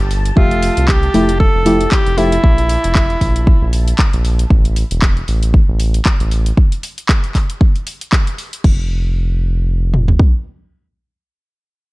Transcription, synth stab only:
0.36 1.11 F3 medium
0.36 1.11 A3 medium
0.36 1.12 G4 medium
0.36 1.12 E5 medium
1.14 1.30 F3 medium
1.14 1.30 A3 medium
1.14 1.30 E4 medium
1.14 1.30 G4 medium
1.66 1.82 F3 loud
1.66 1.82 A3 medium
1.66 1.82 E4 medium
1.66 1.82 G4 loud
2.17 2.33 F3 medium
2.17 2.33 A3 medium
2.17 2.34 E4 medium
2.17 2.34 G4 medium

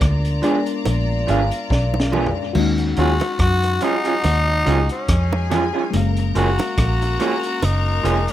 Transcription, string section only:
0.00 2.51 F4 medium
0.00 2.51 D5 medium
0.00 2.51 A#5 medium
2.56 5.05 F#4 medium
2.56 5.05 F#5 medium
5.09 5.91 G#4 medium
5.09 5.91 G#5 medium
5.93 8.33 A#4 medium
5.93 8.33 A#5 medium

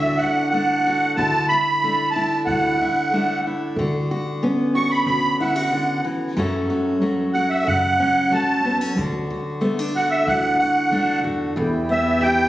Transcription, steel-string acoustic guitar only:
0.00 1.17 A2 medium
0.00 1.17 D3 medium
0.00 0.52 A3 medium
0.00 0.52 D4 soft
0.00 0.20 F#4 medium
0.21 0.86 F#4 medium
0.53 1.14 A3 medium
0.53 1.22 D4 medium
0.87 1.18 F#4 medium
1.18 3.77 D3 medium
1.18 1.50 E4 medium
1.51 2.15 E4 medium
1.83 3.12 A3 medium
1.83 3.13 D4 medium
2.16 2.80 E4 medium
2.48 3.77 A2 medium
2.82 3.45 E4 medium
3.13 3.74 A3 medium
3.13 3.74 D4 medium
3.47 3.78 E4 medium
3.79 5.06 D3 medium
3.79 4.11 F#4 medium
4.11 4.75 F#4 medium
4.43 6.33 B3 medium
4.43 6.34 C#4 medium
4.75 5.40 F#4 medium
5.08 5.71 D3 medium
5.40 5.56 E4 medium
5.56 6.37 F#4 soft
5.72 6.04 D3 medium
6.04 6.37 E3 medium
6.37 8.93 F#2 medium
6.37 7.01 F#3 medium
6.37 7.02 A3 medium
6.37 7.99 C#4 medium
6.37 6.70 F#4 medium
6.70 7.34 F#4 medium
7.01 8.31 F#3 medium
7.01 8.31 A3 medium
7.35 8.98 F#4 medium
7.67 8.32 C#3 medium
8.00 8.64 C#4 medium
8.31 8.97 F#3 medium
8.31 8.93 A3 medium
8.65 8.81 B3 medium
8.81 8.97 C#4 soft
8.97 11.57 D3 medium
8.97 9.29 F#4 medium
9.30 9.95 F#4 medium
9.61 10.91 A3 medium
9.61 9.79 B3 medium
9.79 10.91 D4 medium
9.96 10.59 F#4 medium
10.27 11.57 A2 medium
10.60 11.23 F#4 medium
10.92 11.53 A3 medium
10.92 11.53 D4 medium
11.24 11.53 F#4 medium
11.56 12.49 E2 medium
11.89 12.49 B3 medium
12.21 12.49 E3 medium
12.21 12.49 G4 medium

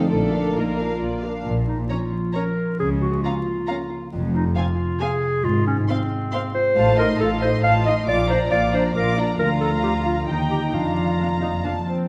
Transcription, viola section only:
0.09 0.30 A#3 soft
0.09 0.30 F4 soft
0.32 0.55 D4 soft
0.32 0.55 A#4 soft
0.54 0.77 A#3 soft
0.54 0.77 F4 soft
0.77 1.00 D4 soft
0.77 1.00 A#4 soft
1.00 1.21 A#3 soft
1.00 1.21 F4 soft
1.23 1.45 D4 soft
1.23 1.46 A#4 soft
1.91 1.99 C#4 soft
2.35 2.43 C#4 soft
3.25 3.33 C#4 soft
3.70 3.78 C#4 soft
4.57 4.65 C4 soft
5.01 5.09 C4 medium
5.89 5.97 C4 medium
6.33 6.41 C4 medium
6.77 6.97 F4 soft
6.99 7.20 D#4 soft
7.21 7.42 F4 soft
7.43 7.64 D#4 soft
7.64 7.84 F4 medium
7.86 8.08 D#4 medium
8.07 8.28 F4 soft
8.29 8.51 D4 soft
8.52 8.73 F4 soft
8.74 8.96 D4 soft
8.95 9.16 F4 soft
9.18 9.40 D4 soft
9.39 10.24 F4 medium
10.28 10.74 D#4 soft
10.73 11.14 D4 soft
11.19 11.27 D4 soft
11.41 11.49 D#4 soft
11.65 11.73 D4 soft
11.87 12.08 C4 soft

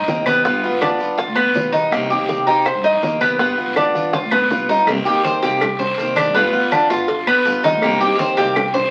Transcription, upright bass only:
0.00 0.16 A#1 medium
0.17 0.44 C2 medium
0.45 0.71 G1 loud
0.73 0.89 G1 medium
0.90 1.26 G2 medium
1.27 1.45 D2 loud
1.46 1.63 F1 medium
1.64 1.91 B1 medium
1.92 2.18 C2 loud
2.19 2.36 C2 medium
2.37 2.73 C3 medium
2.75 2.93 G2 loud
2.93 3.11 A#1 medium
3.12 3.38 C2 medium
3.39 3.66 G1 loud
3.67 3.85 G1 medium
3.85 4.21 G2 medium
4.23 4.41 D2 loud
4.42 4.59 F1 medium
4.59 4.86 B1 medium
4.87 4.96 C2 loud
4.97 5.14 G2 medium
5.42 5.95 C2 loud
5.98 6.24 C2 medium
6.25 6.33 G2 loud
6.34 6.43 G1 loud
6.44 6.61 D2 medium
6.90 7.42 G1 loud
7.45 7.72 G1 medium
7.73 7.82 D2 loud
7.82 7.91 C2 loud
7.92 8.09 G2 loud
8.38 8.90 C2 medium

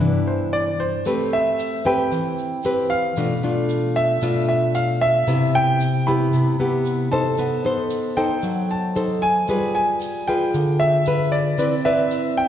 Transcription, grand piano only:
0.00 0.32 E5 loud
0.27 0.52 C5 medium
0.53 0.80 D5 medium
0.80 1.34 C5 medium
1.33 1.87 E5 medium
1.86 2.94 G5 medium
2.90 3.92 F5 medium
3.96 4.47 E5 medium
4.49 4.76 E5 medium
4.75 5.02 F5 medium
5.01 5.56 E5 loud
5.55 6.09 G5 loud
6.07 7.15 B5 medium
7.12 8.20 A5 medium
8.17 8.71 G5 medium
8.71 9.24 A5 medium
9.22 9.71 G#5 loud
9.75 10.24 G#5 medium
10.28 10.82 G5 medium
10.80 11.34 E5 medium
11.32 11.86 D5 medium
11.85 12.39 E5 medium
12.37 12.48 G5 medium

